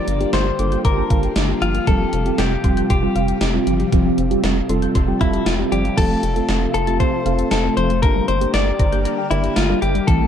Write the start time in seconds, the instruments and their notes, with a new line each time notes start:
Already playing: string machine D3 G3 A#3 F4 G4, clean electric guitar D5
0.08 analog synth bass G1, synth pluck D4, closed hi-hat
0.21 tine electric piano A#3 D4 F4 G4, synth pluck G4, closed hi-hat
0.33 analog synth bass G1, clean electric guitar C5, snare, closed hi-hat
0.59 analog synth bass G1, tine electric piano A#3 D4 F4 A4, synth pluck D6, closed hi-hat
0.72 synth pluck G6, closed hi-hat
0.85 analog synth bass G1, clean electric guitar A#4, synth pluck D6, kick, closed hi-hat
0.97 tine electric piano A#3 D4 F4 A5, synth pluck A#5
1.10 analog synth bass G1, synth pluck F5, kick, closed hi-hat
1.23 synth pluck G4, closed hi-hat
1.36 analog synth bass G1, synth pluck D4, snare, closed hi-hat
1.49 synth pluck A#3, tine electric piano A#3 D4 F4 G4
1.62 analog synth bass G1, synth pluck F3, clean electric guitar F4, closed hi-hat
1.74 synth pluck A#3, closed hi-hat
1.87 analog synth bass F1, string machine C3 F3, synth pluck F3, tine electric piano G3 C4 F4 G4, clean electric guitar A4, kick, closed hi-hat
2.00 synth pluck G3
2.13 analog synth bass F1, synth pluck C4, closed hi-hat
2.26 tine electric piano G3 C4 F4 G4, synth pluck G4, closed hi-hat
2.38 analog synth bass F1, clean electric guitar G4, snare, closed hi-hat
2.64 analog synth bass F1, tine electric piano G3 C4 F4 G4, synth pluck C6, kick, closed hi-hat
2.77 synth pluck G6, closed hi-hat
2.90 analog synth bass F1, clean electric guitar G4, synth pluck C6, kick, closed hi-hat
3.03 tine electric piano G3 C4 F4 G4, synth pluck G5
3.16 analog synth bass F1, synth pluck F5, closed hi-hat
3.28 synth pluck G4, closed hi-hat
3.41 analog synth bass F1, synth pluck C4, snare, closed hi-hat
3.54 tine electric piano G3 C4 F4 G4, synth pluck G3
3.67 analog synth bass G1, synth pluck F3, closed hi-hat
3.80 synth pluck G3, closed hi-hat
3.93 analog synth bass F1, synth pluck F3, tine electric piano G3 C4 F4 G4, string machine A4, kick, closed hi-hat
4.05 synth pluck G3
4.18 analog synth bass F1, synth pluck C4, closed hi-hat
4.31 tine electric piano G3 C4 F4 G4, synth pluck G4, closed hi-hat
4.44 analog synth bass F1, snare, closed hi-hat
4.69 analog synth bass F1, tine electric piano G3 C4 F4 A4, synth pluck C6, closed hi-hat
4.82 synth pluck G6, closed hi-hat
4.95 analog synth bass F1, synth pluck C6, kick, closed hi-hat
5.08 tine electric piano G3 C4 F4 G4, synth pluck G5
5.21 analog synth bass F1, clean electric guitar E4, synth pluck F5, tine electric piano A5, kick, closed hi-hat
5.33 synth pluck G4, closed hi-hat
5.46 analog synth bass F1, synth pluck C4, clean electric guitar F4, tine electric piano G5, snare, closed hi-hat
5.59 synth pluck G3, tine electric piano G3 C4 F4 G4
5.72 analog synth bass G1, synth pluck F3, clean electric guitar G4, tine electric piano D5, closed hi-hat
5.85 synth pluck G3, closed hi-hat
5.97 analog synth bass F1, string machine C3 F3 A3 F4 A4, synth pluck F3, tine electric piano A3 C4 F4 A4, clean electric guitar A4, kick, closed hi-hat, crash
6.10 synth pluck A3
6.23 analog synth bass F1, synth pluck C4, closed hi-hat
6.36 tine electric piano A3 C4 F4 A4, synth pluck A4, closed hi-hat
6.49 analog synth bass F1, snare, closed hi-hat
6.74 analog synth bass F1, clean electric guitar A4, synth pluck C6, closed hi-hat
6.87 tine electric piano A3 C4 F4 G4, synth pluck A6, closed hi-hat
7.00 clean electric guitar C5, synth pluck C6, kick, closed hi-hat
7.13 synth pluck A5
7.26 analog synth bass F1, tine electric piano A3 C4 F4 A4, synth pluck F5, closed hi-hat
7.38 synth pluck A4, closed hi-hat
7.51 analog synth bass F1, synth pluck C4, clean electric guitar A4, snare, closed hi-hat
7.64 synth pluck A3, tine electric piano A3 C4 F4 A4
7.77 analog synth bass F1, synth pluck F3, clean electric guitar C5, closed hi-hat
7.90 synth pluck A3, closed hi-hat
8.02 analog synth bass G1, synth pluck D3, string machine D3 G3 A#3 G4 A#4, tine electric piano A#3 D4 G4 A#4, clean electric guitar A#4, kick, closed hi-hat
8.15 synth pluck G3
8.28 analog synth bass G1, synth pluck A#3, clean electric guitar C5, closed hi-hat
8.41 tine electric piano A#3 D4 G4 A#4, synth pluck G4, closed hi-hat
8.54 analog synth bass G1, clean electric guitar D5, snare, closed hi-hat
8.79 analog synth bass G1, synth pluck A#5, kick, closed hi-hat
8.92 tine electric piano A#3 D4 G4 A#4, synth pluck G6, closed hi-hat
9.05 synth pluck A#5, closed hi-hat
9.18 synth pluck G5
9.31 analog synth bass G1, tine electric piano A#3 D4 G4 A#4, clean electric guitar E4, synth pluck D5, closed hi-hat
9.44 synth pluck G4, closed hi-hat
9.56 analog synth bass G1, synth pluck A#3, clean electric guitar F4, snare, closed hi-hat
9.69 synth pluck G3, tine electric piano A#3 D4 G4 A#4
9.82 analog synth bass G1, synth pluck D3, clean electric guitar G4, closed hi-hat
9.95 synth pluck G3, closed hi-hat
10.07 analog synth bass A1, string machine C3 E3 A3 E4 A4, synth pluck E3, tine electric piano A3 C4 E4 A4, clean electric guitar A4, kick, closed hi-hat
10.21 synth pluck A3